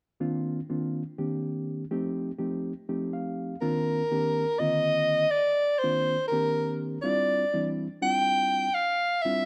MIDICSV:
0, 0, Header, 1, 3, 480
1, 0, Start_track
1, 0, Tempo, 489396
1, 191, Time_signature, 7, 3, 24, 8
1, 9272, End_track
2, 0, Start_track
2, 0, Title_t, "Soprano saxophone"
2, 0, Program_c, 0, 64
2, 3543, Note_on_c, 0, 70, 91
2, 4503, Note_on_c, 0, 75, 99
2, 4517, Note_off_c, 0, 70, 0
2, 5205, Note_on_c, 0, 74, 100
2, 5219, Note_off_c, 0, 75, 0
2, 5675, Note_on_c, 0, 72, 90
2, 5689, Note_off_c, 0, 74, 0
2, 6150, Note_off_c, 0, 72, 0
2, 6156, Note_on_c, 0, 70, 84
2, 6674, Note_off_c, 0, 70, 0
2, 6884, Note_on_c, 0, 74, 89
2, 7552, Note_off_c, 0, 74, 0
2, 7872, Note_on_c, 0, 79, 100
2, 8574, Note_on_c, 0, 77, 94
2, 8589, Note_off_c, 0, 79, 0
2, 9043, Note_on_c, 0, 76, 93
2, 9058, Note_off_c, 0, 77, 0
2, 9272, Note_off_c, 0, 76, 0
2, 9272, End_track
3, 0, Start_track
3, 0, Title_t, "Reed electric piano"
3, 0, Program_c, 1, 4
3, 199, Note_on_c, 1, 58, 63
3, 200, Note_on_c, 1, 51, 66
3, 202, Note_on_c, 1, 62, 63
3, 204, Note_on_c, 1, 60, 65
3, 204, Note_on_c, 1, 65, 76
3, 580, Note_off_c, 1, 51, 0
3, 580, Note_off_c, 1, 58, 0
3, 581, Note_off_c, 1, 62, 0
3, 582, Note_off_c, 1, 60, 0
3, 582, Note_off_c, 1, 65, 0
3, 685, Note_on_c, 1, 58, 57
3, 685, Note_on_c, 1, 65, 63
3, 689, Note_on_c, 1, 60, 54
3, 690, Note_on_c, 1, 62, 55
3, 693, Note_on_c, 1, 51, 60
3, 1000, Note_off_c, 1, 58, 0
3, 1000, Note_off_c, 1, 65, 0
3, 1002, Note_off_c, 1, 60, 0
3, 1003, Note_off_c, 1, 62, 0
3, 1004, Note_off_c, 1, 51, 0
3, 1161, Note_on_c, 1, 60, 53
3, 1162, Note_on_c, 1, 51, 60
3, 1162, Note_on_c, 1, 67, 66
3, 1164, Note_on_c, 1, 62, 53
3, 1165, Note_on_c, 1, 58, 53
3, 1800, Note_off_c, 1, 51, 0
3, 1800, Note_off_c, 1, 60, 0
3, 1800, Note_off_c, 1, 67, 0
3, 1801, Note_off_c, 1, 58, 0
3, 1801, Note_off_c, 1, 62, 0
3, 1872, Note_on_c, 1, 57, 66
3, 1875, Note_on_c, 1, 67, 80
3, 1876, Note_on_c, 1, 53, 68
3, 1878, Note_on_c, 1, 63, 63
3, 1880, Note_on_c, 1, 60, 67
3, 2257, Note_off_c, 1, 57, 0
3, 2258, Note_off_c, 1, 67, 0
3, 2259, Note_off_c, 1, 53, 0
3, 2260, Note_off_c, 1, 63, 0
3, 2261, Note_off_c, 1, 60, 0
3, 2340, Note_on_c, 1, 67, 69
3, 2343, Note_on_c, 1, 57, 56
3, 2346, Note_on_c, 1, 53, 62
3, 2347, Note_on_c, 1, 60, 55
3, 2348, Note_on_c, 1, 63, 58
3, 2668, Note_off_c, 1, 67, 0
3, 2670, Note_off_c, 1, 57, 0
3, 2671, Note_off_c, 1, 53, 0
3, 2672, Note_off_c, 1, 60, 0
3, 2672, Note_off_c, 1, 63, 0
3, 2832, Note_on_c, 1, 60, 57
3, 2834, Note_on_c, 1, 57, 59
3, 2834, Note_on_c, 1, 63, 57
3, 2836, Note_on_c, 1, 67, 66
3, 2837, Note_on_c, 1, 53, 62
3, 3073, Note_on_c, 1, 77, 52
3, 3475, Note_off_c, 1, 60, 0
3, 3476, Note_off_c, 1, 57, 0
3, 3476, Note_off_c, 1, 63, 0
3, 3477, Note_off_c, 1, 67, 0
3, 3478, Note_off_c, 1, 53, 0
3, 3520, Note_off_c, 1, 77, 0
3, 3549, Note_on_c, 1, 58, 66
3, 3549, Note_on_c, 1, 62, 65
3, 3551, Note_on_c, 1, 51, 76
3, 3552, Note_on_c, 1, 60, 67
3, 3552, Note_on_c, 1, 65, 80
3, 3935, Note_off_c, 1, 58, 0
3, 3935, Note_off_c, 1, 62, 0
3, 3936, Note_off_c, 1, 51, 0
3, 3937, Note_off_c, 1, 60, 0
3, 3937, Note_off_c, 1, 65, 0
3, 4034, Note_on_c, 1, 58, 59
3, 4036, Note_on_c, 1, 51, 61
3, 4037, Note_on_c, 1, 60, 58
3, 4040, Note_on_c, 1, 62, 56
3, 4040, Note_on_c, 1, 67, 67
3, 4355, Note_off_c, 1, 58, 0
3, 4356, Note_off_c, 1, 51, 0
3, 4356, Note_off_c, 1, 60, 0
3, 4358, Note_off_c, 1, 62, 0
3, 4358, Note_off_c, 1, 67, 0
3, 4511, Note_on_c, 1, 58, 56
3, 4513, Note_on_c, 1, 65, 69
3, 4515, Note_on_c, 1, 50, 57
3, 4516, Note_on_c, 1, 51, 62
3, 4517, Note_on_c, 1, 60, 57
3, 5154, Note_off_c, 1, 58, 0
3, 5155, Note_off_c, 1, 65, 0
3, 5156, Note_off_c, 1, 50, 0
3, 5156, Note_off_c, 1, 51, 0
3, 5157, Note_off_c, 1, 60, 0
3, 5722, Note_on_c, 1, 60, 57
3, 5725, Note_on_c, 1, 65, 69
3, 5726, Note_on_c, 1, 58, 61
3, 5726, Note_on_c, 1, 62, 55
3, 5730, Note_on_c, 1, 51, 59
3, 6038, Note_off_c, 1, 60, 0
3, 6040, Note_off_c, 1, 58, 0
3, 6040, Note_off_c, 1, 62, 0
3, 6040, Note_off_c, 1, 65, 0
3, 6042, Note_off_c, 1, 51, 0
3, 6196, Note_on_c, 1, 51, 62
3, 6201, Note_on_c, 1, 62, 56
3, 6202, Note_on_c, 1, 58, 58
3, 6202, Note_on_c, 1, 60, 61
3, 6204, Note_on_c, 1, 67, 74
3, 6836, Note_off_c, 1, 51, 0
3, 6838, Note_off_c, 1, 60, 0
3, 6838, Note_off_c, 1, 62, 0
3, 6839, Note_off_c, 1, 58, 0
3, 6840, Note_off_c, 1, 67, 0
3, 6900, Note_on_c, 1, 62, 68
3, 6903, Note_on_c, 1, 64, 78
3, 6903, Note_on_c, 1, 65, 81
3, 6907, Note_on_c, 1, 55, 69
3, 6907, Note_on_c, 1, 60, 68
3, 7290, Note_off_c, 1, 62, 0
3, 7291, Note_off_c, 1, 64, 0
3, 7291, Note_off_c, 1, 65, 0
3, 7293, Note_off_c, 1, 55, 0
3, 7293, Note_off_c, 1, 60, 0
3, 7390, Note_on_c, 1, 62, 58
3, 7392, Note_on_c, 1, 55, 63
3, 7393, Note_on_c, 1, 64, 75
3, 7394, Note_on_c, 1, 60, 60
3, 7396, Note_on_c, 1, 52, 63
3, 7712, Note_off_c, 1, 55, 0
3, 7712, Note_off_c, 1, 62, 0
3, 7713, Note_off_c, 1, 64, 0
3, 7714, Note_off_c, 1, 52, 0
3, 7714, Note_off_c, 1, 60, 0
3, 7863, Note_on_c, 1, 62, 62
3, 7865, Note_on_c, 1, 55, 57
3, 7866, Note_on_c, 1, 64, 61
3, 7867, Note_on_c, 1, 65, 71
3, 7869, Note_on_c, 1, 60, 61
3, 8509, Note_off_c, 1, 62, 0
3, 8510, Note_off_c, 1, 55, 0
3, 8510, Note_off_c, 1, 64, 0
3, 8511, Note_off_c, 1, 65, 0
3, 8512, Note_off_c, 1, 60, 0
3, 9072, Note_on_c, 1, 60, 60
3, 9075, Note_on_c, 1, 64, 61
3, 9075, Note_on_c, 1, 65, 71
3, 9077, Note_on_c, 1, 55, 58
3, 9077, Note_on_c, 1, 62, 60
3, 9272, Note_off_c, 1, 55, 0
3, 9272, Note_off_c, 1, 60, 0
3, 9272, Note_off_c, 1, 62, 0
3, 9272, Note_off_c, 1, 64, 0
3, 9272, Note_off_c, 1, 65, 0
3, 9272, End_track
0, 0, End_of_file